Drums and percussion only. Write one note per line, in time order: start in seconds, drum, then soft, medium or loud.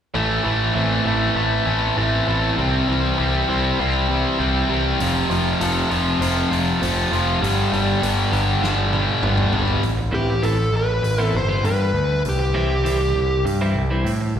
5.00 open hi-hat medium
5.31 open hi-hat soft
5.61 open hi-hat medium
5.91 open hi-hat soft
6.22 open hi-hat medium
6.53 open hi-hat soft
6.83 open hi-hat medium
7.13 open hi-hat soft
7.44 open hi-hat medium
7.73 open hi-hat soft
8.03 open hi-hat medium
8.33 open hi-hat soft
8.64 snare soft
8.93 high tom soft
9.23 mid tom medium
9.38 mid tom medium
9.53 floor tom medium
9.68 floor tom medium
9.83 open hi-hat soft
10.43 open hi-hat soft
11.04 open hi-hat soft
11.65 open hi-hat soft
12.25 open hi-hat soft
12.86 open hi-hat soft
13.46 open hi-hat soft
14.06 open hi-hat soft